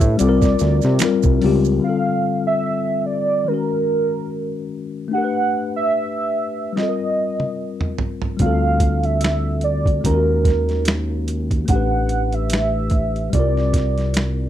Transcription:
Already playing: A3 D4 G4 B4 E5
0.00 A2, kick, closed hi-hat, maracas
0.17 C2 G3 C4 F4 D5, closed hi-hat, maracas
0.22 A4
0.29 A#4
0.42 kick, snare, maracas
0.59 D2, snare, closed hi-hat, maracas
0.82 C3, snare, maracas
0.99 G3 C4, finger snap, snare, closed hi-hat, maracas
1.02 F4 A#4, finger snap
1.23 C2, kick, maracas
1.41 C#2 G3 C4 F4, open hi-hat
1.46 G4
1.64 maracas
1.79 D3 G3
1.83 C4 F4 F5
1.89 A4
2.47 E5
3.06 D5
3.44 D#3 G#3 A#4
3.49 C#4 F#4
3.54 A#4
5.08 A3 D4
5.13 G4 F#5
5.18 A#4
5.24 B4
5.76 E5
6.73 G3 C4 D#5
6.77 F4, snare
6.82 A4
6.89 A#4
7.40 high tom
7.81 mid tom
7.98 floor tom
8.22 floor tom
8.37 G3 C4, kick, closed hi-hat
8.41 D2 F4 F5
8.46 A4
8.80 kick, closed hi-hat
9.03 E5, closed hi-hat
9.21 finger snap, snare, closed hi-hat
9.61 D5, closed hi-hat
9.86 kick, closed hi-hat
10.01 G#3 C#4, kick, closed hi-hat
10.05 D#2 F4 A#4
10.11 F#4 A#4
10.45 kick, snare, closed hi-hat
10.69 snare, closed hi-hat
10.85 finger snap, snare, closed hi-hat
11.28 closed hi-hat
11.51 kick, closed hi-hat
11.66 A3 D4 F#5, kick, closed hi-hat
11.70 A1 G4
11.75 B4
12.09 closed hi-hat
12.32 E5, closed hi-hat
12.50 E5, finger snap, snare, closed hi-hat
12.90 kick, closed hi-hat
13.16 closed hi-hat
13.30 G3 C4 D5, kick, closed hi-hat
13.34 C2 F4
13.40 A#4
13.57 snare
13.73 kick, snare, closed hi-hat
13.98 snare, closed hi-hat
14.14 finger snap, snare, closed hi-hat

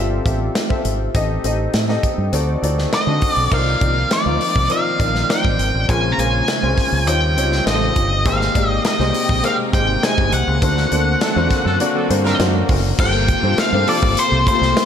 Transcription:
Already playing: G1 C4 F4 G4 A4 D5 E5
0.25 A1 C4 F4 G4 A4 E5, kick, closed hi-hat
0.55 snare, closed hi-hat
0.69 C4 F4 G4 A4 E5, kick
0.85 G#1, closed hi-hat
1.14 A1 C4 D#4 G4 A4 D#5, kick, closed hi-hat
1.44 A1 C4 D#4 G4 A4 D#5, closed hi-hat
1.74 A2, snare, closed hi-hat
1.88 C4 D#4 G4 A4 D#5, snare
2.03 kick, closed hi-hat
2.18 G2
2.32 D2 C4 D#4 F#4 A4 D5, closed hi-hat
2.62 D2 C4 D#4 F#4 A4 D5, closed hi-hat
2.78 snare
2.93 D#5, snare, closed hi-hat
3.07 D3 C4 D4 D#4 F#4 A4
3.22 kick, open hi-hat
3.34 B1 D5
3.51 C2 D#3 F3 A#3 C4 D#4 F4 A#4 D5 F5, kick, crash
3.80 C2 C4 D#4 F4 A#4 D5, kick, closed hi-hat
4.11 D5, snare, closed hi-hat
4.25 D2 C4 D#4 F4 A#4 F5
4.41 open hi-hat
4.56 C2, kick
4.69 C4 D#4 F4 A#4 D5 F5, closed hi-hat
4.99 A#1 C4 D#4 F4 A#4 D5, kick, closed hi-hat
5.15 snare
5.29 C4 D#4 F4 A#4 D5 G5, snare, closed hi-hat
5.45 A1, kick
5.59 G#1, closed hi-hat
5.74 A1
5.88 A#1 C#3 G#3 A#3 C#4 F4 G#4 C5 G#5, kick, closed hi-hat
6.12 A#5
6.18 A#1 A#3 C4 F4 G#4 C5 G#5, closed hi-hat
6.24 C#4
6.48 snare, closed hi-hat
6.62 C2 A#3 C#4 F4 G#4 C5
6.78 kick, snare, open hi-hat
6.92 C#2
7.07 D#2 C#3 G3 C4 D#4 F4 G4 C#5 G5, closed hi-hat
7.36 C#2 C4 D#4 F4 G4 C#5, closed hi-hat
7.52 snare
7.65 A1 C4 D#4 F4 G4 A4 D#5, snare, closed hi-hat
7.96 G1, kick, closed hi-hat
8.25 G#1 C3 G#3 A#3 D#4 G4 G#4 C5 F5 G5, kick, closed hi-hat
8.41 snare
8.55 G#1 A#3 D#4 G4 G#4 D5, kick, closed hi-hat
8.69 D#5
8.85 D#5, snare, closed hi-hat
8.99 C2 A#3 D#4 G4 G#4 C5, snare
9.14 open hi-hat
9.29 A#1, kick
9.43 A#3 D#4 G4 G#4 C5 F5, closed hi-hat
9.73 G#1 A#3 D#4 G4 G#4 C5 G5, kick, closed hi-hat
10.02 A#3 D#4 G4 G#4 C5 G#5, snare, closed hi-hat
10.18 G1, kick
10.32 C2 F#5, closed hi-hat
10.47 C#2
10.61 D2 D3 A#3 C4 D4 F#4 A4 C5, kick, closed hi-hat
10.77 snare
10.91 D2 A#3 D4 F#4 A4 C5, closed hi-hat
11.21 F#3 C4 A4, snare, closed hi-hat
11.36 E2 A#3 D4 F#4 A4 C5
11.51 kick, snare, closed hi-hat
11.65 F#2 F#3 C4 A4
11.80 A#3 D4 F#4 A4 D5, closed hi-hat
11.95 F#3 C4 A4
12.09 G2 A#3 D4 F#4 A4 C5, closed hi-hat
12.25 F#3 C4 A#4, snare
12.39 F#2 A#3 D4 F#4 A4 C5, snare, closed hi-hat
12.69 F#1, kick, open hi-hat
12.98 G1 C3 A#3 F4 G4 A4 C5 G5, kick, crash
13.29 kick, closed hi-hat
13.43 G2 A#3 F4 G4 A4 C5
13.58 F5, muted fingered electric bass stroke, snare, closed hi-hat
13.73 G2 A#3 F4 G4 A4 C5
13.87 F3 D4 A4 D5, open hi-hat
14.03 G1, kick
14.17 C5, closed hi-hat
14.32 C2
14.47 A3 F4 G4 A4 C5, kick, closed hi-hat
14.53 A#3
14.61 C2, snare
14.77 snare, closed hi-hat

